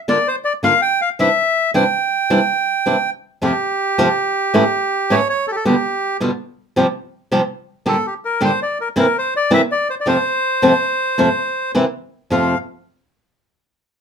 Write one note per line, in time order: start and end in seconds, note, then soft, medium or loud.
0.08 0.17 D3 medium
0.08 0.17 A#3 medium
0.08 0.17 D4 loud
0.08 0.17 F4 loud
0.08 0.28 D5 loud
0.28 0.36 C5 loud
0.45 0.53 D5 loud
0.63 0.72 D3 medium
0.63 0.72 A#3 medium
0.63 0.73 D4 medium
0.63 0.73 F4 loud
0.63 0.81 F5 loud
0.82 1.01 G5 loud
1.01 1.09 F5 medium
1.19 1.28 C3 medium
1.19 1.28 E3 medium
1.19 1.28 G3 medium
1.19 1.28 D4 medium
1.19 1.28 E4 loud
1.19 1.71 E5 loud
1.74 1.83 C3 medium
1.74 1.83 E3 loud
1.74 1.83 G3 loud
1.74 1.83 D4 loud
1.74 1.83 E4 loud
1.74 3.10 G5 loud
2.30 2.39 C3 medium
2.30 2.39 E3 loud
2.30 2.39 G3 loud
2.30 2.39 D4 loud
2.30 2.39 E4 loud
2.86 2.95 C3 medium
2.86 2.95 E3 medium
2.86 2.95 G3 medium
2.86 2.95 D4 medium
2.86 2.95 E4 medium
3.42 3.51 F2 medium
3.42 3.51 C3 medium
3.42 3.51 F3 medium
3.42 3.51 A3 medium
3.42 3.51 C4 loud
3.42 3.51 F4 medium
3.42 5.16 G4 medium
3.98 4.07 F2 medium
3.98 4.07 C3 medium
3.98 4.07 F3 medium
3.98 4.07 A3 loud
3.98 4.07 C4 loud
3.98 4.07 F4 loud
4.54 4.63 A2 medium
4.54 4.63 E3 medium
4.54 4.63 A3 loud
4.54 4.63 C#4 loud
4.54 4.63 E4 loud
5.10 5.19 A2 loud
5.10 5.19 E3 loud
5.10 5.19 A3 medium
5.10 5.19 C#4 loud
5.10 5.19 E4 medium
5.10 5.28 C#5 loud
5.30 5.46 C#5 loud
5.47 5.56 G4 medium
5.47 5.51 A4 medium
5.56 5.65 A4 medium
5.65 5.74 B2 medium
5.65 5.74 D3 medium
5.65 5.74 G3 medium
5.65 5.74 B3 loud
5.65 5.75 F4 medium
5.65 6.17 G4 medium
6.20 6.30 B2 medium
6.20 6.30 D3 medium
6.20 6.30 G3 medium
6.20 6.30 B3 loud
6.20 6.30 F4 loud
6.76 6.85 C3 loud
6.76 6.85 F3 medium
6.76 6.86 G3 loud
6.76 6.86 C4 medium
6.76 6.86 G4 medium
7.32 7.40 C3 medium
7.32 7.41 F3 loud
7.32 7.40 G3 loud
7.32 7.41 C4 loud
7.32 7.41 G4 loud
7.86 7.95 A#2 medium
7.86 7.95 D3 medium
7.86 7.95 G3 medium
7.86 7.95 D4 loud
7.86 7.95 G4 loud
7.86 8.06 A4 medium
8.06 8.14 G4 medium
8.25 8.41 A#4 medium
8.40 8.50 A#2 medium
8.40 8.50 D3 loud
8.40 8.50 G3 medium
8.40 8.50 D4 loud
8.40 8.50 G4 loud
8.40 8.60 C5 loud
8.62 8.78 D5 medium
8.81 8.88 A#4 medium
8.96 9.05 C3 medium
8.96 9.05 E3 loud
8.96 9.05 A#3 loud
8.96 9.05 C4 loud
8.96 9.06 E4 loud
8.96 9.17 A#4 medium
9.18 9.34 C5 loud
9.36 9.52 D5 loud
9.51 9.60 C3 medium
9.51 9.60 E3 loud
9.51 9.60 A#3 medium
9.51 9.60 C4 medium
9.51 9.61 E4 loud
9.51 9.62 E5 loud
9.72 9.88 D5 medium
9.90 9.95 C5 medium
10.01 10.07 D5 medium
10.06 10.15 F2 medium
10.06 10.16 C3 medium
10.06 10.16 F3 medium
10.06 10.16 A3 medium
10.06 10.16 C4 loud
10.06 10.16 F4 medium
10.06 11.72 C5 loud
10.62 10.71 F2 medium
10.62 10.72 C3 loud
10.62 10.72 F3 loud
10.62 10.72 A3 loud
10.62 10.72 C4 loud
10.62 10.72 F4 loud
11.18 11.27 F2 medium
11.18 11.28 C3 medium
11.18 11.28 F3 medium
11.18 11.28 A3 medium
11.18 11.28 C4 loud
11.18 11.28 F4 loud
11.75 11.84 C3 medium
11.75 11.84 E3 loud
11.75 11.84 A#3 loud
11.75 11.84 C4 medium
11.75 11.84 E4 loud
12.30 12.53 F2 medium
12.30 12.54 C3 medium
12.30 12.54 F3 medium
12.30 12.54 A3 medium
12.30 12.54 C4 medium
12.30 12.54 F4 loud
12.30 12.58 F5 medium